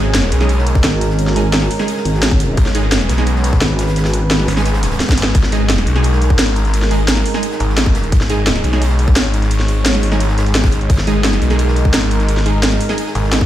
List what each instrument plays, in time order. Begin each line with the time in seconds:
Already playing: detuned saw bass G#1, synth stab G#3 D#4 G#4, analog synth pad G#3 C#4 A#4
0.14 snare, closed hi-hat
0.23 snare, closed hi-hat
0.32 detuned saw bass B1, closed hi-hat
0.41 synth stab G#3 D#4 G#4, snare
0.49 closed hi-hat
0.59 snare
0.67 closed hi-hat
0.75 kick, snare
0.84 wobble bass G#1, snare, closed hi-hat
1.01 snare, closed hi-hat
1.10 snare
1.19 closed hi-hat
1.27 snare
1.36 synth stab G#3 D#4 G#4, closed hi-hat
1.53 snare, closed hi-hat, open hi-hat
1.62 snare
1.71 closed hi-hat, open hi-hat
1.78 synth stab G#3 D#4 G#4, snare
1.88 closed hi-hat
1.97 snare
2.05 wobble bass G#1, closed hi-hat
2.14 snare
2.22 snare, closed hi-hat
2.31 kick
2.40 snare, closed hi-hat
2.57 detuned saw bass G#1, analog synth pad B4, kick, closed hi-hat
2.66 snare
2.75 synth stab G#3 D#4 G#4, snare, closed hi-hat
2.92 snare, closed hi-hat
3.01 snare, closed hi-hat
3.09 detuned saw bass B1, snare, closed hi-hat
3.18 synth stab G#3 D#4 G#4, snare, closed hi-hat
3.26 closed hi-hat
3.36 snare
3.44 snare, closed hi-hat
3.52 kick, snare
3.61 wobble bass G#1, snare, closed hi-hat
3.79 snare, closed hi-hat
3.87 snare, closed hi-hat
3.96 snare, closed hi-hat
4.05 snare, closed hi-hat
4.13 closed hi-hat
4.30 snare, closed hi-hat, open hi-hat
4.40 snare
4.48 detuned saw bass G#1, snare, closed hi-hat, open hi-hat
4.57 synth stab G#3 D#4 G#4, snare, closed hi-hat
4.65 snare, closed hi-hat
4.74 snare, closed hi-hat
4.83 snare, closed hi-hat
4.91 snare, closed hi-hat
5.00 snare, closed hi-hat
5.08 kick, snare, closed hi-hat
5.12 snare
5.17 detuned saw bass G#1, snare, closed hi-hat
5.23 snare
5.34 detuned saw bass G#1, analog synth pad G#3 D#4 A#4, kick, closed hi-hat
5.43 snare
5.52 synth stab G#3 D#4 G#4, snare, closed hi-hat
5.69 snare, closed hi-hat
5.78 snare, closed hi-hat
5.86 detuned saw bass B1, closed hi-hat
5.96 synth stab G#3 D#4 G#4, snare
6.03 closed hi-hat
6.13 snare
6.21 snare, closed hi-hat
6.30 kick
6.39 detuned saw bass G#1, snare, closed hi-hat
6.48 closed hi-hat
6.56 snare, closed hi-hat
6.65 snare, closed hi-hat
6.74 closed hi-hat
6.82 snare
6.91 synth stab G#3 D#4 G#4, closed hi-hat
7.08 snare, closed hi-hat, open hi-hat
7.17 snare, closed hi-hat
7.25 closed hi-hat, open hi-hat
7.34 synth stab G#3 D#4 G#4, snare
7.43 closed hi-hat
7.51 snare
7.60 detuned saw bass G#1, closed hi-hat
7.69 snare
7.77 snare, closed hi-hat
7.86 kick
7.95 snare, closed hi-hat
8.03 closed hi-hat
8.12 detuned saw bass G#1, analog synth pad C#5, kick, closed hi-hat
8.21 snare
8.29 synth stab G#3 D#4 G#4, snare, closed hi-hat
8.47 snare, closed hi-hat
8.56 snare, closed hi-hat
8.64 detuned saw bass B1, closed hi-hat
8.73 synth stab G#3 D#4 G#4, snare, closed hi-hat
8.82 closed hi-hat
8.90 snare
8.99 closed hi-hat
9.07 kick, snare
9.16 detuned saw bass G#1, snare, closed hi-hat
9.34 snare, closed hi-hat
9.42 snare, closed hi-hat
9.51 closed hi-hat
9.60 snare
9.68 closed hi-hat
9.86 snare, closed hi-hat, open hi-hat
9.94 snare, closed hi-hat
10.03 detuned saw bass G#1, closed hi-hat, open hi-hat
10.12 synth stab G#3 D#4 G#4, snare
10.20 closed hi-hat
10.29 snare
10.38 snare, closed hi-hat
10.46 snare, closed hi-hat
10.55 snare, closed hi-hat
10.64 kick, snare, closed hi-hat
10.71 snare, closed hi-hat
10.81 closed hi-hat
10.90 detuned saw bass G#1, analog synth pad A#4, kick, closed hi-hat
10.98 snare
11.07 synth stab G#3 D#4 G#4, snare, closed hi-hat
11.24 snare, closed hi-hat
11.33 snare, closed hi-hat
11.42 detuned saw bass B1, closed hi-hat
11.50 synth stab G#3 D#4 G#4, snare, closed hi-hat
11.59 closed hi-hat
11.68 snare
11.76 snare, closed hi-hat
11.85 kick
11.94 detuned saw bass G#1, snare, closed hi-hat
12.03 closed hi-hat
12.11 snare, closed hi-hat
12.20 snare, closed hi-hat
12.28 closed hi-hat
12.37 snare
12.46 synth stab G#3 D#4 G#4, closed hi-hat
12.63 snare, closed hi-hat, open hi-hat
12.72 snare, closed hi-hat
12.81 closed hi-hat, open hi-hat
12.89 synth stab G#3 D#4 G#4, snare
12.98 closed hi-hat
13.07 snare
13.15 detuned saw bass G#1, closed hi-hat
13.24 snare
13.33 snare, closed hi-hat
13.41 kick